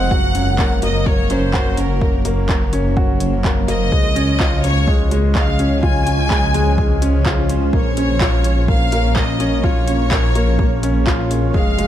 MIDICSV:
0, 0, Header, 1, 6, 480
1, 0, Start_track
1, 0, Key_signature, -5, "minor"
1, 0, Tempo, 476190
1, 114, Time_signature, 4, 2, 24, 8
1, 11967, End_track
2, 0, Start_track
2, 0, Title_t, "Violin section"
2, 0, Program_c, 0, 48
2, 0, Note_on_c, 0, 78, 113
2, 794, Note_off_c, 0, 78, 0
2, 840, Note_on_c, 0, 75, 102
2, 1077, Note_off_c, 0, 75, 0
2, 1084, Note_on_c, 0, 73, 97
2, 1319, Note_off_c, 0, 73, 0
2, 1321, Note_on_c, 0, 72, 94
2, 1797, Note_off_c, 0, 72, 0
2, 1798, Note_on_c, 0, 70, 79
2, 2276, Note_off_c, 0, 70, 0
2, 3704, Note_on_c, 0, 75, 116
2, 4629, Note_off_c, 0, 75, 0
2, 4675, Note_on_c, 0, 73, 106
2, 5154, Note_off_c, 0, 73, 0
2, 5396, Note_on_c, 0, 77, 92
2, 5842, Note_off_c, 0, 77, 0
2, 5872, Note_on_c, 0, 80, 126
2, 7273, Note_off_c, 0, 80, 0
2, 7798, Note_on_c, 0, 73, 95
2, 8716, Note_off_c, 0, 73, 0
2, 8756, Note_on_c, 0, 77, 115
2, 9235, Note_off_c, 0, 77, 0
2, 9238, Note_on_c, 0, 75, 97
2, 9713, Note_on_c, 0, 73, 94
2, 9716, Note_off_c, 0, 75, 0
2, 11154, Note_off_c, 0, 73, 0
2, 11638, Note_on_c, 0, 77, 107
2, 11967, Note_off_c, 0, 77, 0
2, 11967, End_track
3, 0, Start_track
3, 0, Title_t, "Ambient pad"
3, 0, Program_c, 1, 92
3, 0, Note_on_c, 1, 70, 74
3, 111, Note_on_c, 1, 54, 76
3, 112, Note_on_c, 1, 58, 71
3, 115, Note_on_c, 1, 61, 75
3, 2030, Note_on_c, 1, 72, 87
3, 3914, Note_off_c, 1, 54, 0
3, 3914, Note_off_c, 1, 70, 0
3, 3915, Note_off_c, 1, 58, 0
3, 3933, Note_off_c, 1, 72, 0
3, 3953, Note_on_c, 1, 73, 89
3, 3957, Note_on_c, 1, 53, 84
3, 3957, Note_on_c, 1, 56, 71
3, 3957, Note_on_c, 1, 68, 71
3, 5854, Note_off_c, 1, 73, 0
3, 5880, Note_on_c, 1, 72, 84
3, 7757, Note_off_c, 1, 56, 0
3, 7757, Note_off_c, 1, 68, 0
3, 7778, Note_off_c, 1, 72, 0
3, 7788, Note_on_c, 1, 73, 87
3, 7790, Note_on_c, 1, 70, 73
3, 7791, Note_on_c, 1, 58, 73
3, 9693, Note_off_c, 1, 70, 0
3, 9706, Note_on_c, 1, 68, 71
3, 11593, Note_off_c, 1, 73, 0
3, 11594, Note_off_c, 1, 58, 0
3, 11594, Note_off_c, 1, 61, 0
3, 11967, Note_off_c, 1, 53, 0
3, 11967, Note_off_c, 1, 68, 0
3, 11967, End_track
4, 0, Start_track
4, 0, Title_t, "Upright piano"
4, 0, Program_c, 2, 0
4, 0, Control_c, 2, 64, 127
4, 0, Note_on_c, 2, 56, 77
4, 0, Note_on_c, 2, 60, 98
4, 0, Note_on_c, 2, 65, 98
4, 115, Note_on_c, 2, 66, 98
4, 129, Control_c, 2, 64, 0
4, 132, Note_off_c, 2, 60, 0
4, 133, Note_off_c, 2, 65, 0
4, 134, Note_off_c, 2, 56, 0
4, 251, Note_off_c, 2, 66, 0
4, 276, Control_c, 2, 64, 127
4, 355, Note_on_c, 2, 61, 72
4, 583, Note_off_c, 2, 61, 0
4, 595, Note_on_c, 2, 58, 79
4, 821, Note_off_c, 2, 58, 0
4, 836, Note_on_c, 2, 58, 96
4, 1056, Note_off_c, 2, 58, 0
4, 1071, Note_on_c, 2, 58, 81
4, 1209, Note_off_c, 2, 58, 0
4, 1315, Note_on_c, 2, 61, 102
4, 1451, Note_off_c, 2, 61, 0
4, 1549, Note_on_c, 2, 66, 105
4, 1688, Note_off_c, 2, 66, 0
4, 1792, Note_on_c, 2, 61, 75
4, 2021, Note_off_c, 2, 61, 0
4, 2028, Note_on_c, 2, 58, 85
4, 2255, Note_off_c, 2, 58, 0
4, 2270, Note_on_c, 2, 58, 102
4, 2494, Note_off_c, 2, 58, 0
4, 2509, Note_on_c, 2, 58, 75
4, 2648, Note_off_c, 2, 58, 0
4, 2751, Note_on_c, 2, 61, 98
4, 2890, Note_off_c, 2, 61, 0
4, 2991, Note_on_c, 2, 66, 95
4, 3129, Note_off_c, 2, 66, 0
4, 3228, Note_on_c, 2, 61, 76
4, 3459, Note_off_c, 2, 61, 0
4, 3469, Note_on_c, 2, 58, 82
4, 3696, Note_off_c, 2, 58, 0
4, 3711, Note_on_c, 2, 58, 102
4, 3941, Note_off_c, 2, 58, 0
4, 3952, Note_on_c, 2, 56, 84
4, 3968, Control_c, 2, 64, 0
4, 4090, Note_off_c, 2, 56, 0
4, 4124, Control_c, 2, 64, 127
4, 4191, Note_on_c, 2, 61, 101
4, 4329, Note_off_c, 2, 61, 0
4, 4436, Note_on_c, 2, 65, 97
4, 4572, Note_off_c, 2, 65, 0
4, 4674, Note_on_c, 2, 61, 77
4, 4902, Note_off_c, 2, 61, 0
4, 4914, Note_on_c, 2, 56, 85
4, 5141, Note_off_c, 2, 56, 0
4, 5156, Note_on_c, 2, 56, 98
4, 5382, Note_off_c, 2, 56, 0
4, 5397, Note_on_c, 2, 56, 79
4, 5532, Note_off_c, 2, 56, 0
4, 5638, Note_on_c, 2, 61, 96
4, 5773, Note_off_c, 2, 61, 0
4, 5874, Note_on_c, 2, 65, 103
4, 6011, Note_off_c, 2, 65, 0
4, 6116, Note_on_c, 2, 61, 77
4, 6343, Note_off_c, 2, 61, 0
4, 6354, Note_on_c, 2, 56, 76
4, 6579, Note_off_c, 2, 56, 0
4, 6595, Note_on_c, 2, 56, 102
4, 6820, Note_off_c, 2, 56, 0
4, 6835, Note_on_c, 2, 56, 82
4, 6971, Note_off_c, 2, 56, 0
4, 7074, Note_on_c, 2, 61, 95
4, 7211, Note_off_c, 2, 61, 0
4, 7316, Note_on_c, 2, 65, 103
4, 7452, Note_off_c, 2, 65, 0
4, 7557, Note_on_c, 2, 61, 76
4, 7783, Note_off_c, 2, 61, 0
4, 7798, Note_on_c, 2, 58, 83
4, 7809, Control_c, 2, 64, 0
4, 7933, Note_off_c, 2, 58, 0
4, 7969, Control_c, 2, 64, 127
4, 8039, Note_on_c, 2, 61, 93
4, 8173, Note_off_c, 2, 61, 0
4, 8279, Note_on_c, 2, 65, 100
4, 8413, Note_off_c, 2, 65, 0
4, 8519, Note_on_c, 2, 61, 77
4, 8744, Note_off_c, 2, 61, 0
4, 8754, Note_on_c, 2, 58, 81
4, 8982, Note_off_c, 2, 58, 0
4, 8998, Note_on_c, 2, 58, 101
4, 9219, Note_off_c, 2, 58, 0
4, 9235, Note_on_c, 2, 58, 75
4, 9371, Note_off_c, 2, 58, 0
4, 9476, Note_on_c, 2, 61, 100
4, 9612, Note_off_c, 2, 61, 0
4, 9713, Note_on_c, 2, 65, 104
4, 9850, Note_off_c, 2, 65, 0
4, 9959, Note_on_c, 2, 61, 70
4, 10185, Note_off_c, 2, 61, 0
4, 10197, Note_on_c, 2, 58, 82
4, 10422, Note_off_c, 2, 58, 0
4, 10437, Note_on_c, 2, 58, 101
4, 10659, Note_off_c, 2, 58, 0
4, 10675, Note_on_c, 2, 58, 82
4, 10811, Note_off_c, 2, 58, 0
4, 10917, Note_on_c, 2, 61, 98
4, 11052, Note_off_c, 2, 61, 0
4, 11153, Note_on_c, 2, 65, 107
4, 11291, Note_off_c, 2, 65, 0
4, 11397, Note_on_c, 2, 61, 80
4, 11624, Note_off_c, 2, 61, 0
4, 11638, Note_on_c, 2, 56, 87
4, 11646, Control_c, 2, 64, 0
4, 11853, Control_c, 2, 64, 127
4, 11862, Note_off_c, 2, 56, 0
4, 11877, Note_on_c, 2, 56, 95
4, 11967, Note_off_c, 2, 56, 0
4, 11967, End_track
5, 0, Start_track
5, 0, Title_t, "Detuned saw bass"
5, 0, Program_c, 3, 39
5, 110, Note_on_c, 3, 30, 88
5, 3928, Note_off_c, 3, 30, 0
5, 3952, Note_on_c, 3, 37, 91
5, 7769, Note_off_c, 3, 37, 0
5, 7793, Note_on_c, 3, 34, 94
5, 11610, Note_off_c, 3, 34, 0
5, 11636, Note_on_c, 3, 29, 88
5, 11967, Note_off_c, 3, 29, 0
5, 11967, End_track
6, 0, Start_track
6, 0, Title_t, "Drums"
6, 111, Note_on_c, 9, 36, 103
6, 212, Note_off_c, 9, 36, 0
6, 351, Note_on_c, 9, 42, 63
6, 452, Note_off_c, 9, 42, 0
6, 590, Note_on_c, 9, 39, 88
6, 591, Note_on_c, 9, 36, 101
6, 691, Note_off_c, 9, 36, 0
6, 691, Note_off_c, 9, 39, 0
6, 828, Note_on_c, 9, 42, 59
6, 929, Note_off_c, 9, 42, 0
6, 1071, Note_on_c, 9, 36, 100
6, 1172, Note_off_c, 9, 36, 0
6, 1310, Note_on_c, 9, 42, 64
6, 1411, Note_off_c, 9, 42, 0
6, 1549, Note_on_c, 9, 39, 88
6, 1551, Note_on_c, 9, 36, 99
6, 1650, Note_off_c, 9, 39, 0
6, 1652, Note_off_c, 9, 36, 0
6, 1788, Note_on_c, 9, 42, 63
6, 1889, Note_off_c, 9, 42, 0
6, 2031, Note_on_c, 9, 36, 94
6, 2132, Note_off_c, 9, 36, 0
6, 2268, Note_on_c, 9, 42, 63
6, 2369, Note_off_c, 9, 42, 0
6, 2510, Note_on_c, 9, 39, 94
6, 2511, Note_on_c, 9, 36, 105
6, 2611, Note_off_c, 9, 39, 0
6, 2612, Note_off_c, 9, 36, 0
6, 2750, Note_on_c, 9, 42, 57
6, 2850, Note_off_c, 9, 42, 0
6, 2991, Note_on_c, 9, 36, 102
6, 3092, Note_off_c, 9, 36, 0
6, 3230, Note_on_c, 9, 42, 60
6, 3330, Note_off_c, 9, 42, 0
6, 3472, Note_on_c, 9, 36, 94
6, 3473, Note_on_c, 9, 39, 83
6, 3572, Note_off_c, 9, 36, 0
6, 3574, Note_off_c, 9, 39, 0
6, 3713, Note_on_c, 9, 42, 61
6, 3814, Note_off_c, 9, 42, 0
6, 3953, Note_on_c, 9, 36, 103
6, 4053, Note_off_c, 9, 36, 0
6, 4195, Note_on_c, 9, 42, 64
6, 4296, Note_off_c, 9, 42, 0
6, 4434, Note_on_c, 9, 36, 101
6, 4435, Note_on_c, 9, 39, 95
6, 4535, Note_off_c, 9, 36, 0
6, 4536, Note_off_c, 9, 39, 0
6, 4676, Note_on_c, 9, 42, 60
6, 4777, Note_off_c, 9, 42, 0
6, 4915, Note_on_c, 9, 36, 100
6, 5015, Note_off_c, 9, 36, 0
6, 5155, Note_on_c, 9, 42, 58
6, 5256, Note_off_c, 9, 42, 0
6, 5394, Note_on_c, 9, 39, 88
6, 5395, Note_on_c, 9, 36, 90
6, 5495, Note_off_c, 9, 39, 0
6, 5496, Note_off_c, 9, 36, 0
6, 5636, Note_on_c, 9, 42, 57
6, 5736, Note_off_c, 9, 42, 0
6, 5876, Note_on_c, 9, 36, 92
6, 5976, Note_off_c, 9, 36, 0
6, 6115, Note_on_c, 9, 42, 61
6, 6216, Note_off_c, 9, 42, 0
6, 6355, Note_on_c, 9, 36, 97
6, 6355, Note_on_c, 9, 39, 93
6, 6456, Note_off_c, 9, 36, 0
6, 6456, Note_off_c, 9, 39, 0
6, 6596, Note_on_c, 9, 42, 59
6, 6697, Note_off_c, 9, 42, 0
6, 6835, Note_on_c, 9, 36, 98
6, 6936, Note_off_c, 9, 36, 0
6, 7077, Note_on_c, 9, 42, 61
6, 7177, Note_off_c, 9, 42, 0
6, 7313, Note_on_c, 9, 36, 94
6, 7317, Note_on_c, 9, 39, 92
6, 7414, Note_off_c, 9, 36, 0
6, 7417, Note_off_c, 9, 39, 0
6, 7555, Note_on_c, 9, 42, 59
6, 7656, Note_off_c, 9, 42, 0
6, 7793, Note_on_c, 9, 36, 104
6, 7894, Note_off_c, 9, 36, 0
6, 8034, Note_on_c, 9, 42, 64
6, 8135, Note_off_c, 9, 42, 0
6, 8272, Note_on_c, 9, 39, 99
6, 8273, Note_on_c, 9, 36, 110
6, 8373, Note_off_c, 9, 39, 0
6, 8374, Note_off_c, 9, 36, 0
6, 8511, Note_on_c, 9, 42, 62
6, 8612, Note_off_c, 9, 42, 0
6, 8753, Note_on_c, 9, 36, 108
6, 8854, Note_off_c, 9, 36, 0
6, 8994, Note_on_c, 9, 42, 64
6, 9094, Note_off_c, 9, 42, 0
6, 9233, Note_on_c, 9, 36, 99
6, 9234, Note_on_c, 9, 39, 95
6, 9334, Note_off_c, 9, 36, 0
6, 9334, Note_off_c, 9, 39, 0
6, 9475, Note_on_c, 9, 42, 62
6, 9576, Note_off_c, 9, 42, 0
6, 9714, Note_on_c, 9, 36, 107
6, 9815, Note_off_c, 9, 36, 0
6, 9954, Note_on_c, 9, 42, 68
6, 10055, Note_off_c, 9, 42, 0
6, 10194, Note_on_c, 9, 36, 113
6, 10194, Note_on_c, 9, 39, 100
6, 10295, Note_off_c, 9, 36, 0
6, 10295, Note_off_c, 9, 39, 0
6, 10437, Note_on_c, 9, 42, 61
6, 10537, Note_off_c, 9, 42, 0
6, 10674, Note_on_c, 9, 36, 105
6, 10775, Note_off_c, 9, 36, 0
6, 10918, Note_on_c, 9, 42, 65
6, 11019, Note_off_c, 9, 42, 0
6, 11155, Note_on_c, 9, 36, 100
6, 11158, Note_on_c, 9, 39, 100
6, 11256, Note_off_c, 9, 36, 0
6, 11259, Note_off_c, 9, 39, 0
6, 11398, Note_on_c, 9, 42, 63
6, 11499, Note_off_c, 9, 42, 0
6, 11636, Note_on_c, 9, 36, 109
6, 11736, Note_off_c, 9, 36, 0
6, 11880, Note_on_c, 9, 42, 69
6, 11967, Note_off_c, 9, 42, 0
6, 11967, End_track
0, 0, End_of_file